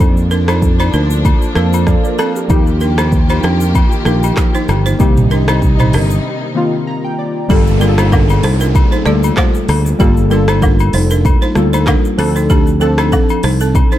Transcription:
Already playing: F3 A#3 D4 A4
0.00 F2, kick, high agogo, shaker
0.17 shaker
0.31 D4 A#4, shaker
0.48 D#4 C5, cross-stick, high agogo, shaker
0.62 kick, shaker
0.79 D#4 C5, high agogo, shaker
0.93 D2 D4 A#4, shaker
1.11 shaker
1.25 kick, high agogo, shaker
1.42 shaker
1.55 F2 F3 A#3 D4 A4 A#4, cross-stick, shaker
1.73 high agogo, shaker
1.87 D5 F5, kick, cross-stick, shaker
2.04 A#4 D5, shaker
2.19 C4 A4, cross-stick, high agogo, shaker
2.36 G4 A#4, shaker
2.48 D#2 D#3 F3 A#3 D#4 F4 G4, kick, high agogo, shaker
2.67 shaker
2.81 D4 A#4, shaker
2.98 D#4 C5, cross-stick, high agogo, shaker
3.12 kick, shaker
3.29 D#4 C5, high agogo, shaker
3.43 F2 D4 A#4, cross-stick, shaker
3.61 shaker
3.75 kick, high agogo, shaker
3.92 shaker
4.05 A#1 F3 A#3 D4 D#4 G4 A#4, cross-stick, shaker
4.23 high agogo, shaker
4.37 kick, cross-stick, clap, shaker
4.55 D#4 C5, shaker
4.69 G1, cross-stick, high agogo, shaker
4.86 D#4 C5, shaker
4.99 C2 C3 D#3 G3 A#3 C4 D#4 G4, kick, high agogo, shaker
5.17 mid tom, shaker
5.31 D4 A#4, shaker
5.48 D#4 C5, cross-stick, high agogo, shaker
5.62 kick, shaker
5.79 D#4 C5, mid tom, high agogo, shaker
5.93 G1 D4 A#4, cross-stick, open hi-hat, shaker
6.11 shaker
6.55 D#3 A#3 C4 F4
6.87 A#5
7.04 G5
7.19 D5
7.49 G1 G3 A#3 F4 G4 A4, kick, downlifter, high agogo, shaker
7.67 shaker
7.80 G3 A#3 D4 F4 G#4 A#4, shaker
7.89 A4
7.98 D#4 C5, cross-stick, high agogo, shaker
8.12 D4 A#4, kick, low woodblock, shaker
8.29 high agogo, shaker
8.43 C2 D#4 C5, cross-stick, open hi-hat, shaker
8.61 D4 A#4, shaker
8.75 kick, high agogo, shaker
8.92 D#4 C5, shaker
9.05 D2 G3 A3 F4 A4 D5, cross-stick, shaker
9.12 A#3
9.23 high agogo, shaker
9.37 F4 C5, kick, cross-stick, clap, low woodblock, shaker
9.55 shaker
9.69 D2, cross-stick, open hi-hat, high agogo, shaker
9.86 shaker
9.99 G1 G3 A#3 F4 G4 A4, kick, high agogo, shaker
10.17 shaker
10.30 G3 A#3 D4 F4 A4 A#4, shaker
10.48 D#4 C5, cross-stick, high agogo, shaker
10.62 D4 A#4, kick, low woodblock, shaker
10.79 high agogo, shaker
10.93 F1 D#4 C5, open hi-hat, shaker
11.11 D4 A#4, shaker
11.25 kick, high agogo, shaker
11.42 D#4 C5, shaker
11.55 D2 G3 A#3 F4 A4, cross-stick, shaker
11.73 D#4 C5, high agogo, shaker
11.87 D4 A#4, kick, cross-stick, clap, low woodblock, shaker
12.05 shaker
12.17 D2 F3 C4 D4 A4, cross-stick, open hi-hat, high agogo, shaker
12.36 D#4 C5, shaker
12.50 C4 G4, kick, high agogo, shaker
12.67 shaker
12.80 F3 C4 D4 A4, shaker
12.98 D#4 C5, cross-stick, high agogo, shaker
13.12 C4 A4, kick, low woodblock, shaker
13.29 high agogo, shaker
13.43 C2 D#4 C5, cross-stick, open hi-hat, shaker
13.61 C4 A4, shaker
13.75 kick, high agogo, shaker
13.92 D#4 C5, shaker

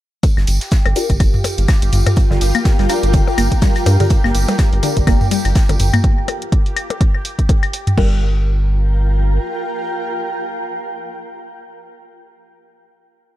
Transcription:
0.23 F4 G4, kick, closed hi-hat, tambourine, percussion blips
0.37 G1, snare, claves
0.47 G1, closed hi-hat, open hi-hat, tambourine
0.61 snare, closed hi-hat, tambourine
0.71 kick, snare, closed hi-hat, tambourine
0.86 G1, open hi-hat, percussion blips, claves
0.96 D4 F4 G4 A#4 G5, closed hi-hat, open hi-hat, tambourine
1.04 A#4
1.10 G1, kick, closed hi-hat, tambourine
1.20 kick, closed hi-hat, tambourine, claves
1.34 mid tom, tambourine
1.44 closed hi-hat, open hi-hat, tambourine, percussion blips
1.57 G1, closed hi-hat, tambourine
1.68 kick, snare, closed hi-hat, tambourine, claves
1.82 G1, closed hi-hat, tambourine
1.92 G1, closed hi-hat, mid tom, open hi-hat, tambourine
2.06 closed hi-hat, mid tom, tambourine, percussion blips, claves
2.16 kick, closed hi-hat, tambourine
2.31 G1 D3, snare
2.41 G1, closed hi-hat, open hi-hat, tambourine
2.55 A#3, closed hi-hat, tambourine, claves
2.65 kick, snare, closed hi-hat, tambourine, percussion blips
2.79 G1 G3, snare, open hi-hat
2.89 D4 F4 G4 A#4, closed hi-hat, open hi-hat, tambourine, claves
3.03 G1, closed hi-hat, tambourine
3.13 D3, kick, closed hi-hat, tambourine
3.27 tambourine, percussion blips
3.38 G1 A#3, closed hi-hat, open hi-hat, tambourine, claves
3.52 kick, closed hi-hat, tambourine
3.62 G3, kick, snare, closed hi-hat, tambourine
3.75 closed hi-hat, open hi-hat, tambourine, claves
3.86 G2, closed hi-hat, open hi-hat, tambourine, percussion blips
4.00 D3 D4 F4 G4 A#4, closed hi-hat, mid tom, tambourine
4.10 kick, closed hi-hat, tambourine
4.24 G1 A#3, snare, claves
4.34 G1, closed hi-hat, open hi-hat, tambourine
4.48 G3, snare, closed hi-hat, tambourine, percussion blips
4.58 kick, snare, closed hi-hat, tambourine, claves
4.73 G1, open hi-hat
4.83 D3 D4 F4 G4 A#4, closed hi-hat, open hi-hat, tambourine
4.96 G1, kick, closed hi-hat, tambourine
5.07 A#3, kick, closed hi-hat, tambourine, percussion blips, claves
5.21 mid tom, tambourine
5.31 G3, closed hi-hat, open hi-hat, tambourine
5.45 G1, closed hi-hat, tambourine, claves
5.55 kick, snare, closed hi-hat, tambourine
5.69 G1 D3, closed hi-hat, tambourine, percussion blips
5.79 G1, closed hi-hat, mid tom, open hi-hat, tambourine
5.93 A#3, closed hi-hat, mid tom, tambourine, claves
6.04 kick, closed hi-hat
6.28 open hi-hat, percussion blips, claves
6.42 closed hi-hat
6.52 kick, closed hi-hat
6.66 open hi-hat
6.76 open hi-hat, claves
6.90 closed hi-hat, percussion blips
7.01 kick, closed hi-hat
7.15 claves
7.25 open hi-hat
7.39 kick, closed hi-hat
7.49 kick, closed hi-hat, percussion blips
7.63 open hi-hat, claves
7.73 open hi-hat
7.87 closed hi-hat, mid tom
7.97 G1 G3 D4 F4 G4 A#4, kick, crash
8.06 A#4
8.13 G5

